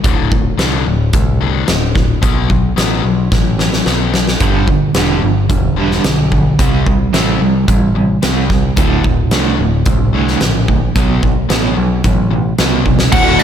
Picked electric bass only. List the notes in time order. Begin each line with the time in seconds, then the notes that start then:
0.04 D1
0.59 C2
0.86 D1
1.13 C2
1.68 D1
2.23 B1
2.77 A1
3.04 B1
3.32 A1
3.86 B1
4.41 G1
4.96 E1
5.23 G1
5.49 E1
6.05 B1
6.59 C2
7.13 A1
7.41 C2
7.68 A1
8.23 C2
8.77 D1
9.31 C2
9.59 D1
9.86 C2
10.41 A#1
10.96 B1
11.50 A1
11.77 B1
12.04 A1
12.59 C2
13.13 D1
13.40 D1